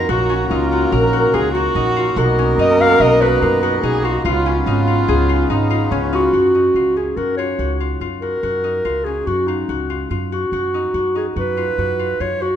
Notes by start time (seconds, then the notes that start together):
Already playing: C#4 D#4 F4 A#4
0.09 A#1 F#3 A#3 F#4 A#4
0.30 C#4
0.51 C#2 D#4 F4
0.72 F#4
0.92 A#1 A#4
1.13 F#4
1.34 C#2 F4 G#4
1.54 F#4
1.75 A#1 D#4
1.96 F4
2.16 B1 A#2 B2 D#4 F#4 A#4
2.39 C#4
2.58 F#2 D#4 D#5
2.80 F#4 F5
3.00 B1 A#4 D#5
3.22 F#4 B4
3.42 F#2 F4
3.63 F#4
3.83 B1 D#4 G#4
4.04 F4 F#4
4.25 C#2 C#3 B3 F4
4.46 C#4
4.66 G#1 D#4 F4
4.87 F4
5.08 C#2 G#4
5.29 F4
5.50 G#1 D#4
5.70 F4
5.91 C#2 C#4
6.13 D#4 F4 F#4
6.33 F#2 F#4
6.55 D#4
6.74 C#2 F4
6.96 C#4 G#4
7.16 F#2 F#4 A#4
7.37 F4 C#5
7.59 C#2 F#4
7.80 F4
8.01 F#2 F4
8.21 F#4 A#4
8.43 F#2 F#4
8.64 D#4
8.85 C#2 F4
9.04 C#4 G#4
9.27 F#2 F#4
9.47 D#4 F4
9.69 C#2 F#4
9.90 F4
10.10 F#2 F4
10.32 F#4
10.52 F#2 F#4
10.74 D#4
10.94 F#2 F#4
11.15 D#4 G#4
11.36 F#2 F#4 B4
11.57 F4
11.78 F#2 F#4
11.99 F4
12.20 F#2 F4 C#5
12.42 F#4